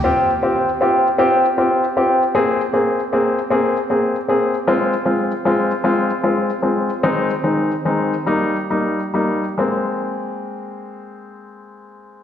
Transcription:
\new Staff \with { instrumentName = "Grand piano" } { \time 6/8 \key aes \major \tempo 4. = 51 <c' f' g'>8 <c' f' g'>8 <c' f' g'>8 <c' f' g'>8 <c' f' g'>8 <c' f' g'>8 | <bes c' aes'>8 <bes c' aes'>8 <bes c' aes'>8 <bes c' aes'>8 <bes c' aes'>8 <bes c' aes'>8 | <aes c' f'>8 <aes c' f'>8 <aes c' f'>8 <aes c' f'>8 <aes c' f'>8 <aes c' f'>8 | <ees aes c' ees'>8 <ees aes c' ees'>8 <ees aes c' ees'>8 <g bes ees'>8 <g bes ees'>8 <g bes ees'>8 |
<aes bes c'>2. | }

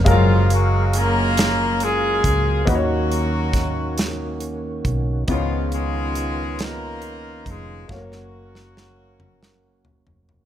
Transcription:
<<
  \new Staff \with { instrumentName = "Grand piano" } { \time 6/8 \key fis \major \tempo 4. = 46 <fis gis ais' eis''>2. | <ais dis' fis' b' cis''>2. | <b dis' eis' cis''>2. | <a ais fis' cis'' eis''>2. | }
  \new Staff \with { instrumentName = "Grand piano" } { \clef bass \time 6/8 \key fis \major r2. | dis4. r4. | cis4. r4. | r2. | }
  \new Staff \with { instrumentName = "Horn section" } { \time 6/8 \key fis \major << { <eis eis'>8 <fis fis'>8 <ais ais'>4 <gis gis'>4 | <fis fis'>2 r4 | <eis eis'>8 <gis gis'>4 <ais ais'>4 <gis gis'>8 | <fis fis'>2~ <fis fis'>8 r8 | } \\ { <gis ais>4 <cis' eis'>4 <cis' eis'>4 | <ais cis'>2 r4 | <gis b>8 <b eis'>4 <dis' eis'>4. | <ais cis'>2~ <ais cis'>8 r8 | } >> }
  \new Staff \with { instrumentName = "Tonewheel organ" } { \time 6/8 \key fis \major <fis ais gis' eis''>2. | <dis ais cis' eis' fis'>2. | <dis b cis' dis' eis'>2. | <fis gis ais cis' fis'>2. | }
  \new Staff \with { instrumentName = "Fingered electric bass" } { \clef bass \time 6/8 \key fis \major fis,,2~ fis,,8 cis,8 | dis,2~ dis,8 b,,8 | cis,2~ cis,8 eis,,8 | fis,,2~ fis,,8 eis,,8 | }
  \new DrumStaff \with { instrumentName = "Drums" } \drummode { \time 6/8 <hh bd>8 hh8 hh8 <hh sn>8 hh8 <hh bd>8 | <hh bd>8 hh8 <hh bd sn>8 <hh sn>8 hh8 <hh bd>8 | <hh bd>8 hh8 hh8 <hh sn>8 hh8 <hh bd>8 | <bd sn>16 sn8 sn16 sn8 toml16 sn8 tomfh16 tomfh16 tomfh16 | }
>>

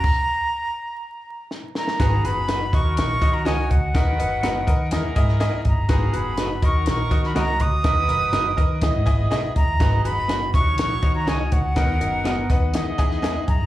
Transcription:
<<
  \new Staff \with { instrumentName = "Flute" } { \time 4/4 \key dis \phrygian \tempo 4 = 123 ais''2. r8 ais''8~ | ais''8 b''4 cis'''8 cis'''8. ais''16 gis''8 fis''8~ | fis''2~ fis''8 r4 ais''8~ | ais''8 b''4 cis'''8 cis'''8. b''16 ais''8 dis'''8~ |
dis'''2~ dis'''8 r4 ais''8~ | ais''8 b''4 cis'''8 cis'''8. ais''16 gis''8 fis''8~ | fis''2~ fis''8 r4 ais''8 | }
  \new Staff \with { instrumentName = "Clean electric guitar" } { \time 4/4 \key dis \phrygian r1 | r4 <dis' fis' b' dis''>8 r4. <cis' fis' ais' dis''>8 r8 | r4 <b fis' ais' dis''>8 r4. <dis' gis' b' dis''>8 r8 | r4 <dis' fis' b' dis''>8 r4. <cis' fis' ais' dis''>8 r8 |
r4 <dis' fis' ais' dis''>8 r4. <dis' gis' b' dis''>8 r8 | r4 <b fis' gis' dis''>8 r4. <cis' fis' ais' dis''>8 r8 | r4 <b fis' ais' dis''>8 r4. <b e' gis' dis''>8 r8 | }
  \new Staff \with { instrumentName = "Upright piano" } { \time 4/4 \key dis \phrygian r1 | <fis' gis' b'>8 <fis' gis' b'>8 <fis' gis' b'>8 <fis' cis'' dis''>4 <fis' cis'' dis''>8 <fis' cis'' dis''>8 <fis' cis'' dis''>8 | <ais' b' dis''>8 <ais' b' dis''>8 <ais' b' dis''>8 <ais' b' dis''>8 <e' gis' dis''>8 <e' gis' dis''>8 <e' gis' dis''>8 <e' gis' dis''>8 | <fis' gis' b'>8 <fis' gis' b'>8 <fis' gis' b'>8 <fis' cis'' dis''>4 <fis' cis'' dis''>8 <fis' cis'' dis''>8 <fis' cis'' dis''>8 |
<ais' b' dis''>8 <ais' b' dis''>8 <ais' b' dis''>8 <ais' b' dis''>8 <e' gis' dis''>8 <e' gis' dis''>8 <e' gis' dis''>8 <e' gis' dis''>8 | <fis' gis' b'>8 <fis' gis' b'>8 <fis' gis' b'>8 <dis' e' fis' cis''>4 <dis' fis' cis''>8 <dis' fis' cis''>8 <dis' fis' cis''>8 | <b dis' ais'>8 <b dis' ais'>8 <b dis' ais'>8 <b dis' b'>8 <dis' e' gis'>8 <dis' e' gis'>8 <dis' e' gis'>8 <dis' e' gis'>8 | }
  \new Staff \with { instrumentName = "Upright piano" } { \clef bass \time 4/4 \key dis \phrygian r1 | gis,4. dis4. r4 | dis4. r8 e4. r8 | gis,4. dis4. r4 |
dis4. r8 e4. r8 | gis,4. dis4. r4 | dis4. r8 e4. r8 | }
  \new Staff \with { instrumentName = "Horn section" } { \time 4/4 \key dis \phrygian r1 | <dis b gis'>4 r8 <fis dis' ais'>2 r8 | <fis dis' b'>4. r8 <e dis' ais'>4. r8 | <dis b gis'>4 r8 <fis dis' ais'>2 r8 |
<fis dis' b'>4. r8 <b gis' dis''>4. r8 | <b gis' dis''>4 r8 <ais fis' cis''>2 r8 | <fis dis' ais'>4. r8 <b gis' dis''>4. r8 | }
  \new Staff \with { instrumentName = "Fingered electric bass" } { \clef bass \time 4/4 \key dis \phrygian r1 | gis,,8 fis,,4 dis,8 ais,,8 dis8 cis,8 d,8 | dis,8 fis,,8 fis,,8 dis8 e,16 r16 gis,8. r16 gis,,16 g,,16 | gis,,8 fis,,4 dis,8 ais,,8 dis8 cis,8 d,8 |
dis,8 fis,,8 fis,,8 dis8 e,16 gis,16 gis,,16 gis,,16 b,,16 r16 cis,16 dis,16 | gis,,8 fis,,4 dis,8 ais,,8 dis8 cis,8 d,8 | dis,8 fis,,4 dis,8 e,16 r16 e,8. r16 fis,16 g,,16 | }
  \new DrumStaff \with { instrumentName = "Drums" } \drummode { \time 4/4 <cymc bd>4 r4 r4 sn8 sn16 sn16 | <hh bd sn>8 hh8 <hh sn>8 <hh bd>8 <hh sn>8 <hh bd>8 <hh sn>8 <hh bd>8 | <hh bd sn>8 hh8 <hh sn>8 <hh bd>8 <hh sn>8 <hh bd>16 sn16 <hh sn>8 <hh bd>8 | <hh bd sn>8 hh8 <hh sn>8 <hh bd>8 <hh sn>8 <hh bd>16 sn16 <hh sn>8 <hh bd>8 |
<hh bd sn>8 hh8 <hh sn>8 <hh bd>8 <hh bd sn>8 <hh bd>8 <hh sn>8 <hh bd>8 | <hh bd sn>8 hh8 <hh sn>8 <hh bd>8 <hh sn>8 <hh bd>8 <hh sn>8 <hh bd>8 | <hh bd sn>8 hh8 <hh sn>8 <hh bd>8 <hh sn>8 <hh bd>16 sn16 <hh sn>8 <hh bd>8 | }
>>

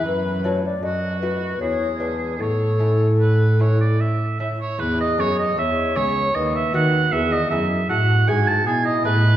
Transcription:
<<
  \new Staff \with { instrumentName = "Oboe" } { \time 3/4 \key a \major \tempo 4 = 77 b'8 r8 fis'4 gis'4 | cis''4 b'8 cis''16 d''16 e''8 e''16 cis''16 | \key e \major b'16 dis''16 cis''16 dis''16 e''8 cis''8 dis''16 e''16 fis''8 | e''16 dis''16 e''8 fis''8 gis''16 a''16 gis''16 dis''16 b'8 | }
  \new Staff \with { instrumentName = "Flute" } { \time 3/4 \key a \major b'8 cis''16 d''16 dis''8 b'8 cis''8 b'8 | a'2 r4 | \key e \major gis'4 cis''4 b'4 | gis'4 fis'4 e'4 | }
  \new Staff \with { instrumentName = "Lute" } { \time 3/4 \key a \major r8 <a d' fis'>8 r8 <a b fis'>8 r8 <gis b d'>8 | r8 <a cis' e'>4 <a cis' e'>4 <a cis' e'>8 | \key e \major r8 <b gis'>4 <b gis'>8 r8 <b fis'>8 | r8 <b e' gis'>4 <b e' gis'>4 <b e' gis'>8 | }
  \new Staff \with { instrumentName = "Lute" } { \clef bass \time 3/4 \key a \major r4 fis,4 e,4 | a,2~ a,8. r16 | \key e \major e,8 fis,8 e,8 r8 dis,8 dis8 | e,8 fis,8 a,8 gis,8 b,8 a,8 | }
  \new Staff \with { instrumentName = "Cello" } { \clef bass \time 3/4 \key a \major fis,4 fis,4 e,4 | a,2~ a,8. r16 | \key e \major e,8 fis,8 e,8 cis,8 dis,8 dis8 | e,8 fis,8 a,8 gis,8 b,8 a,8 | }
>>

